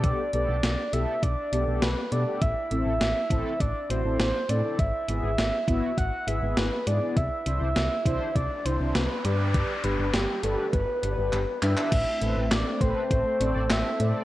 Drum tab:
CC |----------------|----------------|----------------|----------------|
HH |x-x-x-x-x-x-x-x-|x-x-x-x-x-x-x-x-|x-x-x-x-x-x-x-x-|x-x-x-x-x-x-x-x-|
CP |----------------|----------------|----------------|----------------|
SD |----o-------o---|----o-------o---|----o-------o---|----o-------o---|
BD |o-------o-------|o-----o-o-------|o-----o-o-------|o-----o-o-------|

CC |----------------|x---------------|
HH |x-x-x-x-x-x-x-x-|x-x-x-x-x-x-x-x-|
CP |------------x-xx|----x-------x---|
SD |----o-----------|----o-------o---|
BD |o-------o-------|o-----o-o-------|